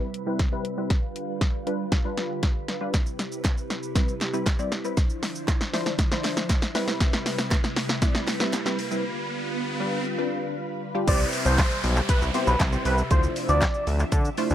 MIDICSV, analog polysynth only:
0, 0, Header, 1, 2, 480
1, 0, Start_track
1, 0, Key_signature, 0, "major"
1, 0, Tempo, 508475
1, 854, Time_signature, 4, 2, 24, 8
1, 13733, End_track
2, 0, Start_track
2, 0, Title_t, "Analog polysynth"
2, 0, Program_c, 0, 90
2, 250, Note_on_c, 0, 55, 87
2, 252, Note_on_c, 0, 60, 83
2, 254, Note_on_c, 0, 64, 80
2, 256, Note_on_c, 0, 71, 101
2, 368, Note_off_c, 0, 55, 0
2, 369, Note_off_c, 0, 60, 0
2, 370, Note_off_c, 0, 64, 0
2, 371, Note_off_c, 0, 71, 0
2, 492, Note_on_c, 0, 55, 90
2, 495, Note_on_c, 0, 60, 80
2, 496, Note_on_c, 0, 64, 78
2, 498, Note_on_c, 0, 71, 97
2, 609, Note_off_c, 0, 55, 0
2, 611, Note_off_c, 0, 60, 0
2, 611, Note_off_c, 0, 64, 0
2, 612, Note_off_c, 0, 71, 0
2, 732, Note_on_c, 0, 55, 76
2, 734, Note_on_c, 0, 60, 72
2, 736, Note_on_c, 0, 64, 70
2, 737, Note_on_c, 0, 71, 83
2, 853, Note_off_c, 0, 55, 0
2, 854, Note_off_c, 0, 60, 0
2, 855, Note_off_c, 0, 64, 0
2, 856, Note_off_c, 0, 71, 0
2, 1572, Note_on_c, 0, 55, 82
2, 1573, Note_on_c, 0, 62, 74
2, 1576, Note_on_c, 0, 65, 73
2, 1576, Note_on_c, 0, 71, 90
2, 1747, Note_off_c, 0, 55, 0
2, 1748, Note_off_c, 0, 62, 0
2, 1749, Note_off_c, 0, 65, 0
2, 1749, Note_off_c, 0, 71, 0
2, 1931, Note_on_c, 0, 55, 80
2, 1933, Note_on_c, 0, 62, 73
2, 1934, Note_on_c, 0, 65, 76
2, 1935, Note_on_c, 0, 71, 89
2, 2281, Note_off_c, 0, 55, 0
2, 2282, Note_off_c, 0, 62, 0
2, 2282, Note_off_c, 0, 65, 0
2, 2283, Note_off_c, 0, 71, 0
2, 2650, Note_on_c, 0, 55, 93
2, 2652, Note_on_c, 0, 62, 85
2, 2653, Note_on_c, 0, 65, 84
2, 2655, Note_on_c, 0, 71, 105
2, 2773, Note_off_c, 0, 55, 0
2, 2773, Note_off_c, 0, 62, 0
2, 2774, Note_off_c, 0, 65, 0
2, 2775, Note_off_c, 0, 71, 0
2, 3731, Note_on_c, 0, 55, 83
2, 3733, Note_on_c, 0, 60, 75
2, 3735, Note_on_c, 0, 64, 75
2, 3737, Note_on_c, 0, 71, 90
2, 3907, Note_off_c, 0, 55, 0
2, 3908, Note_off_c, 0, 60, 0
2, 3909, Note_off_c, 0, 64, 0
2, 3910, Note_off_c, 0, 71, 0
2, 4092, Note_on_c, 0, 55, 90
2, 4093, Note_on_c, 0, 60, 81
2, 4095, Note_on_c, 0, 64, 83
2, 4096, Note_on_c, 0, 71, 104
2, 4209, Note_off_c, 0, 55, 0
2, 4210, Note_off_c, 0, 60, 0
2, 4211, Note_off_c, 0, 64, 0
2, 4211, Note_off_c, 0, 71, 0
2, 4331, Note_on_c, 0, 55, 90
2, 4333, Note_on_c, 0, 60, 83
2, 4334, Note_on_c, 0, 64, 79
2, 4336, Note_on_c, 0, 74, 102
2, 4449, Note_off_c, 0, 55, 0
2, 4450, Note_off_c, 0, 60, 0
2, 4450, Note_off_c, 0, 64, 0
2, 4451, Note_off_c, 0, 74, 0
2, 4573, Note_on_c, 0, 55, 77
2, 4575, Note_on_c, 0, 60, 69
2, 4575, Note_on_c, 0, 64, 72
2, 4578, Note_on_c, 0, 71, 83
2, 4694, Note_off_c, 0, 55, 0
2, 4695, Note_off_c, 0, 60, 0
2, 4695, Note_off_c, 0, 64, 0
2, 4696, Note_off_c, 0, 71, 0
2, 5414, Note_on_c, 0, 53, 83
2, 5415, Note_on_c, 0, 62, 75
2, 5416, Note_on_c, 0, 64, 77
2, 5418, Note_on_c, 0, 72, 92
2, 5588, Note_off_c, 0, 53, 0
2, 5589, Note_off_c, 0, 62, 0
2, 5589, Note_off_c, 0, 64, 0
2, 5590, Note_off_c, 0, 72, 0
2, 5771, Note_on_c, 0, 53, 82
2, 5774, Note_on_c, 0, 62, 77
2, 5775, Note_on_c, 0, 64, 73
2, 5776, Note_on_c, 0, 72, 87
2, 6121, Note_off_c, 0, 53, 0
2, 6122, Note_off_c, 0, 62, 0
2, 6123, Note_off_c, 0, 64, 0
2, 6123, Note_off_c, 0, 72, 0
2, 6370, Note_on_c, 0, 55, 88
2, 6371, Note_on_c, 0, 60, 82
2, 6373, Note_on_c, 0, 64, 82
2, 6374, Note_on_c, 0, 71, 102
2, 7140, Note_off_c, 0, 55, 0
2, 7141, Note_off_c, 0, 60, 0
2, 7142, Note_off_c, 0, 64, 0
2, 7142, Note_off_c, 0, 71, 0
2, 7570, Note_on_c, 0, 55, 85
2, 7571, Note_on_c, 0, 60, 77
2, 7573, Note_on_c, 0, 64, 78
2, 7575, Note_on_c, 0, 74, 97
2, 7746, Note_off_c, 0, 55, 0
2, 7747, Note_off_c, 0, 60, 0
2, 7748, Note_off_c, 0, 64, 0
2, 7749, Note_off_c, 0, 74, 0
2, 7932, Note_on_c, 0, 55, 93
2, 7933, Note_on_c, 0, 60, 88
2, 7934, Note_on_c, 0, 64, 85
2, 7936, Note_on_c, 0, 71, 100
2, 8049, Note_off_c, 0, 55, 0
2, 8050, Note_off_c, 0, 60, 0
2, 8051, Note_off_c, 0, 64, 0
2, 8051, Note_off_c, 0, 71, 0
2, 8170, Note_on_c, 0, 55, 92
2, 8173, Note_on_c, 0, 60, 81
2, 8174, Note_on_c, 0, 64, 84
2, 8176, Note_on_c, 0, 71, 97
2, 8288, Note_off_c, 0, 55, 0
2, 8290, Note_off_c, 0, 60, 0
2, 8290, Note_off_c, 0, 64, 0
2, 8291, Note_off_c, 0, 71, 0
2, 8411, Note_on_c, 0, 55, 82
2, 8414, Note_on_c, 0, 60, 75
2, 8415, Note_on_c, 0, 64, 72
2, 8417, Note_on_c, 0, 71, 90
2, 8533, Note_off_c, 0, 55, 0
2, 8534, Note_off_c, 0, 60, 0
2, 8535, Note_off_c, 0, 64, 0
2, 8536, Note_off_c, 0, 71, 0
2, 9251, Note_on_c, 0, 55, 81
2, 9252, Note_on_c, 0, 62, 78
2, 9255, Note_on_c, 0, 65, 75
2, 9255, Note_on_c, 0, 71, 93
2, 9427, Note_off_c, 0, 55, 0
2, 9427, Note_off_c, 0, 62, 0
2, 9429, Note_off_c, 0, 65, 0
2, 9429, Note_off_c, 0, 71, 0
2, 9612, Note_on_c, 0, 55, 82
2, 9612, Note_on_c, 0, 62, 76
2, 9615, Note_on_c, 0, 65, 75
2, 9616, Note_on_c, 0, 71, 96
2, 9961, Note_off_c, 0, 55, 0
2, 9961, Note_off_c, 0, 62, 0
2, 9963, Note_off_c, 0, 65, 0
2, 9963, Note_off_c, 0, 71, 0
2, 10333, Note_on_c, 0, 55, 97
2, 10334, Note_on_c, 0, 62, 89
2, 10336, Note_on_c, 0, 65, 86
2, 10337, Note_on_c, 0, 67, 103
2, 10445, Note_off_c, 0, 67, 0
2, 10453, Note_on_c, 0, 60, 73
2, 10453, Note_on_c, 0, 71, 80
2, 10454, Note_off_c, 0, 55, 0
2, 10454, Note_off_c, 0, 62, 0
2, 10455, Note_off_c, 0, 65, 0
2, 10455, Note_on_c, 0, 64, 73
2, 10457, Note_on_c, 0, 67, 75
2, 10458, Note_on_c, 0, 72, 90
2, 10918, Note_off_c, 0, 60, 0
2, 10918, Note_off_c, 0, 71, 0
2, 10919, Note_off_c, 0, 64, 0
2, 10920, Note_off_c, 0, 67, 0
2, 10920, Note_off_c, 0, 72, 0
2, 11650, Note_on_c, 0, 59, 90
2, 11651, Note_on_c, 0, 60, 87
2, 11652, Note_on_c, 0, 64, 83
2, 11654, Note_on_c, 0, 67, 82
2, 11654, Note_on_c, 0, 72, 98
2, 11826, Note_off_c, 0, 59, 0
2, 11827, Note_off_c, 0, 60, 0
2, 11828, Note_off_c, 0, 64, 0
2, 11828, Note_off_c, 0, 67, 0
2, 11828, Note_off_c, 0, 72, 0
2, 12010, Note_on_c, 0, 59, 77
2, 12011, Note_on_c, 0, 60, 71
2, 12012, Note_on_c, 0, 64, 69
2, 12013, Note_on_c, 0, 67, 70
2, 12014, Note_on_c, 0, 72, 82
2, 12186, Note_off_c, 0, 59, 0
2, 12187, Note_off_c, 0, 60, 0
2, 12187, Note_off_c, 0, 64, 0
2, 12188, Note_off_c, 0, 67, 0
2, 12188, Note_off_c, 0, 72, 0
2, 12372, Note_on_c, 0, 57, 82
2, 12372, Note_on_c, 0, 62, 78
2, 12374, Note_on_c, 0, 64, 72
2, 12375, Note_on_c, 0, 65, 73
2, 12376, Note_on_c, 0, 72, 89
2, 12837, Note_off_c, 0, 57, 0
2, 12837, Note_off_c, 0, 62, 0
2, 12838, Note_off_c, 0, 64, 0
2, 12839, Note_off_c, 0, 65, 0
2, 12839, Note_off_c, 0, 72, 0
2, 13572, Note_on_c, 0, 57, 112
2, 13573, Note_on_c, 0, 62, 98
2, 13574, Note_on_c, 0, 64, 102
2, 13576, Note_on_c, 0, 65, 102
2, 13576, Note_on_c, 0, 72, 125
2, 13733, Note_off_c, 0, 57, 0
2, 13733, Note_off_c, 0, 62, 0
2, 13733, Note_off_c, 0, 64, 0
2, 13733, Note_off_c, 0, 65, 0
2, 13733, Note_off_c, 0, 72, 0
2, 13733, End_track
0, 0, End_of_file